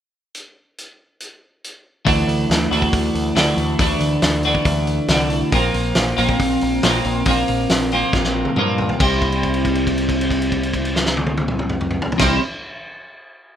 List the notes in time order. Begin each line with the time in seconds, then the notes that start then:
0.35 closed hi-hat
0.78 closed hi-hat
1.20 closed hi-hat
1.64 closed hi-hat
2.05 D2 D3 E3 A3 D4 F#4, kick, open hi-hat
2.28 D2, open hi-hat
2.50 D2, snare, open hi-hat
2.71 D2 D3 E3 A3 D4 F#4, open hi-hat
2.82 kick
2.93 D2, kick, open hi-hat
3.15 D2, open hi-hat
3.35 D2 D3 E3 A3 D4 F#4, snare, open hi-hat
3.57 D2, open hi-hat
3.79 D2 D3 E3 A3 D4 F#4, kick, open hi-hat
4.00 D2, open hi-hat
4.22 D2, snare, open hi-hat
4.43 E3 A3 D4 F#4, open hi-hat
4.47 D3
4.55 kick
4.65 D2, kick, open hi-hat
4.87 open hi-hat
5.08 C2 D3 E3 A3 D4 F#4, snare, open hi-hat
5.30 open hi-hat
5.52 A#1 A#2 F3 A#3 C4 F4, kick, open hi-hat
5.74 A#1, open hi-hat
5.95 A#1, snare, open hi-hat
6.17 A#1 A#2 F3 A#3 C4 F4, open hi-hat
6.29 kick
6.39 A#1, kick, open hi-hat
6.61 A#1, open hi-hat
6.82 A#1 A#2 F3 A#3 C4 F4, snare, open hi-hat
7.05 A#1, open hi-hat
7.25 A#1 A#2 F3 A#3 C4 F4, kick, open hi-hat
7.48 A#1, open hi-hat
7.69 A#1, snare, open hi-hat
7.92 A#2 F3 A#3 C4 F4, open hi-hat
8.13 A#1, kick, snare
8.24 snare
8.45 high tom
8.56 G2 A#2 F3 A#3 C4 F4, mid tom
8.78 floor tom
8.89 floor tom
8.99 C2 C3 G3 C4 E4, kick, crash
9.22 kick, crash
9.32 crash
9.43 kick, crash
9.54 crash
9.65 kick, crash
9.75 crash
9.87 kick, crash
9.98 crash
10.09 kick, crash
10.21 crash
10.31 kick, crash
10.42 crash
10.52 kick, crash
10.63 crash
10.73 kick, crash
10.85 crash
10.96 snare
11.06 snare
11.17 high tom
11.27 high tom
11.38 high tom
11.48 mid tom
11.59 mid tom
11.70 mid tom
11.81 mid tom
11.91 mid tom
12.02 floor tom
12.12 floor tom
12.18 C2 C3 G3 C4, kick, snare, crash
12.22 E4